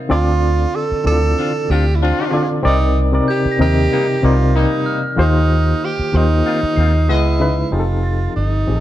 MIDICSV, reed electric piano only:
0, 0, Header, 1, 2, 480
1, 0, Start_track
1, 0, Tempo, 634921
1, 79, Time_signature, 4, 2, 24, 8
1, 6654, End_track
2, 0, Start_track
2, 0, Title_t, "Reed electric piano"
2, 0, Program_c, 0, 4
2, 0, Control_c, 0, 64, 127
2, 0, Note_on_c, 0, 48, 73
2, 0, Note_on_c, 0, 60, 64
2, 0, Note_on_c, 0, 63, 66
2, 0, Note_on_c, 0, 70, 69
2, 0, Note_on_c, 0, 72, 80
2, 0, Note_on_c, 0, 76, 65
2, 0, Note_on_c, 0, 77, 79
2, 68, Note_on_c, 0, 50, 94
2, 72, Note_off_c, 0, 60, 0
2, 72, Note_on_c, 0, 60, 90
2, 77, Note_on_c, 0, 65, 83
2, 81, Note_on_c, 0, 69, 85
2, 84, Note_on_c, 0, 74, 104
2, 88, Note_off_c, 0, 63, 0
2, 88, Control_c, 0, 64, 0
2, 89, Note_off_c, 0, 76, 0
2, 91, Note_off_c, 0, 70, 0
2, 92, Note_off_c, 0, 48, 0
2, 94, Note_off_c, 0, 77, 0
2, 95, Note_off_c, 0, 72, 0
2, 211, Control_c, 0, 64, 127
2, 712, Note_off_c, 0, 50, 0
2, 715, Note_off_c, 0, 60, 0
2, 717, Note_off_c, 0, 65, 0
2, 719, Note_off_c, 0, 69, 0
2, 721, Note_off_c, 0, 74, 0
2, 788, Note_on_c, 0, 50, 71
2, 794, Note_on_c, 0, 60, 62
2, 798, Note_on_c, 0, 64, 50
2, 799, Note_on_c, 0, 69, 65
2, 805, Note_on_c, 0, 74, 76
2, 843, Note_on_c, 0, 65, 66
2, 851, Note_off_c, 0, 64, 0
2, 1645, Note_off_c, 0, 50, 0
2, 1648, Note_off_c, 0, 60, 0
2, 1650, Note_off_c, 0, 69, 0
2, 1653, Note_off_c, 0, 74, 0
2, 1672, Note_off_c, 0, 65, 0
2, 1749, Note_on_c, 0, 50, 74
2, 1753, Note_on_c, 0, 60, 68
2, 1758, Note_on_c, 0, 65, 67
2, 1760, Note_on_c, 0, 69, 71
2, 1765, Note_on_c, 0, 74, 80
2, 1967, Note_off_c, 0, 50, 0
2, 1968, Note_off_c, 0, 60, 0
2, 1971, Note_off_c, 0, 65, 0
2, 1972, Note_off_c, 0, 69, 0
2, 1975, Note_off_c, 0, 74, 0
2, 1984, Note_on_c, 0, 48, 100
2, 1990, Note_on_c, 0, 60, 89
2, 1992, Note_on_c, 0, 63, 85
2, 2001, Note_on_c, 0, 70, 85
2, 2003, Note_on_c, 0, 74, 103
2, 2009, Control_c, 0, 64, 0
2, 2132, Control_c, 0, 64, 127
2, 2313, Note_off_c, 0, 48, 0
2, 2316, Note_off_c, 0, 60, 0
2, 2317, Note_off_c, 0, 63, 0
2, 2322, Note_off_c, 0, 70, 0
2, 2322, Note_off_c, 0, 74, 0
2, 2360, Note_on_c, 0, 48, 71
2, 2367, Note_on_c, 0, 60, 63
2, 2370, Note_on_c, 0, 63, 60
2, 2373, Note_on_c, 0, 70, 63
2, 2379, Note_on_c, 0, 74, 73
2, 2673, Note_off_c, 0, 48, 0
2, 2677, Note_off_c, 0, 60, 0
2, 2678, Note_off_c, 0, 63, 0
2, 2680, Note_off_c, 0, 70, 0
2, 2683, Note_off_c, 0, 74, 0
2, 2713, Note_on_c, 0, 48, 79
2, 2720, Note_on_c, 0, 60, 68
2, 2720, Note_on_c, 0, 63, 69
2, 2729, Note_on_c, 0, 70, 68
2, 2730, Note_on_c, 0, 75, 85
2, 3141, Note_off_c, 0, 48, 0
2, 3144, Note_off_c, 0, 60, 0
2, 3144, Note_off_c, 0, 63, 0
2, 3149, Note_off_c, 0, 70, 0
2, 3149, Note_off_c, 0, 75, 0
2, 3193, Note_on_c, 0, 48, 78
2, 3198, Note_on_c, 0, 60, 74
2, 3201, Note_on_c, 0, 63, 68
2, 3208, Note_on_c, 0, 70, 70
2, 3210, Note_on_c, 0, 74, 82
2, 3834, Note_off_c, 0, 48, 0
2, 3836, Note_off_c, 0, 60, 0
2, 3838, Note_off_c, 0, 63, 0
2, 3841, Note_off_c, 0, 70, 0
2, 3842, Note_off_c, 0, 74, 0
2, 3904, Note_on_c, 0, 51, 96
2, 3910, Note_on_c, 0, 58, 87
2, 3915, Note_on_c, 0, 65, 92
2, 3921, Note_on_c, 0, 67, 85
2, 3924, Note_on_c, 0, 72, 107
2, 3925, Control_c, 0, 64, 0
2, 4041, Control_c, 0, 64, 127
2, 4549, Note_off_c, 0, 51, 0
2, 4552, Note_off_c, 0, 58, 0
2, 4555, Note_off_c, 0, 65, 0
2, 4558, Note_off_c, 0, 67, 0
2, 4559, Note_off_c, 0, 72, 0
2, 4630, Note_on_c, 0, 51, 68
2, 4633, Note_on_c, 0, 58, 65
2, 4638, Note_on_c, 0, 65, 64
2, 4644, Note_on_c, 0, 67, 65
2, 4646, Note_on_c, 0, 72, 79
2, 5354, Note_off_c, 0, 51, 0
2, 5355, Note_off_c, 0, 58, 0
2, 5358, Note_off_c, 0, 65, 0
2, 5361, Note_off_c, 0, 67, 0
2, 5362, Note_off_c, 0, 72, 0
2, 5367, Control_c, 0, 64, 0
2, 5481, Control_c, 0, 64, 127
2, 5593, Note_on_c, 0, 49, 91
2, 5596, Note_on_c, 0, 56, 79
2, 5600, Note_on_c, 0, 63, 80
2, 5606, Note_on_c, 0, 71, 96
2, 5607, Note_on_c, 0, 64, 84
2, 5809, Note_off_c, 0, 49, 0
2, 5810, Note_off_c, 0, 56, 0
2, 5812, Note_off_c, 0, 63, 0
2, 5815, Note_off_c, 0, 71, 0
2, 5816, Note_off_c, 0, 64, 0
2, 5825, Note_on_c, 0, 53, 77
2, 5836, Note_on_c, 0, 60, 73
2, 5838, Note_on_c, 0, 63, 75
2, 5840, Note_on_c, 0, 67, 75
2, 5844, Note_on_c, 0, 68, 72
2, 5848, Control_c, 0, 64, 0
2, 5893, Note_on_c, 0, 69, 90
2, 5894, Note_off_c, 0, 68, 0
2, 5962, Control_c, 0, 64, 127
2, 6472, Note_off_c, 0, 53, 0
2, 6477, Note_off_c, 0, 60, 0
2, 6479, Note_off_c, 0, 63, 0
2, 6479, Note_off_c, 0, 67, 0
2, 6506, Note_off_c, 0, 69, 0
2, 6557, Note_on_c, 0, 53, 63
2, 6559, Note_on_c, 0, 60, 61
2, 6567, Note_on_c, 0, 63, 59
2, 6570, Note_on_c, 0, 67, 57
2, 6572, Note_on_c, 0, 68, 59
2, 6619, Note_off_c, 0, 68, 0
2, 6620, Note_on_c, 0, 69, 67
2, 6654, Note_off_c, 0, 53, 0
2, 6654, Note_off_c, 0, 60, 0
2, 6654, Note_off_c, 0, 63, 0
2, 6654, Note_off_c, 0, 67, 0
2, 6654, Note_off_c, 0, 69, 0
2, 6654, End_track
0, 0, End_of_file